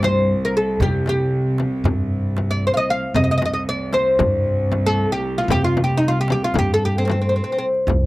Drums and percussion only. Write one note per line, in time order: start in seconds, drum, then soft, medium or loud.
0.03 darbuka tek medium
0.03 frame drum medium
0.81 darbuka dum loud
0.81 frame drum medium
1.06 darbuka tek medium
1.06 frame drum medium
1.58 darbuka tek medium
1.58 frame drum medium
1.85 darbuka dum loud
1.85 frame drum medium
2.37 darbuka tek medium
2.37 frame drum medium
3.15 frame drum medium
3.15 darbuka dum loud
3.42 darbuka tek medium
3.42 frame drum medium
3.93 darbuka tek medium
3.93 frame drum medium
4.19 frame drum medium
4.19 darbuka dum loud
4.72 darbuka tek medium
4.72 frame drum medium
5.50 frame drum loud
5.50 darbuka dum loud
5.77 darbuka tek medium
5.77 frame drum medium
6.02 darbuka ka soft
6.28 darbuka tek medium
6.28 frame drum medium
6.54 darbuka dum medium
6.54 frame drum loud
7.08 darbuka tek medium
7.08 frame drum medium
7.34 darbuka ka soft
7.75 darbuka ka soft
7.88 darbuka dum loud
7.88 frame drum medium